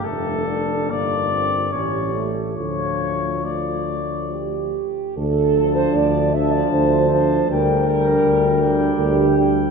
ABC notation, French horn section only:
X:1
M:3/4
L:1/16
Q:1/4=75
K:Dm
V:1 name="French horn section"
D4 _E2 F2 G4 | F4 F4 G4 | A3 c d2 e d c4 | B8 G4 |]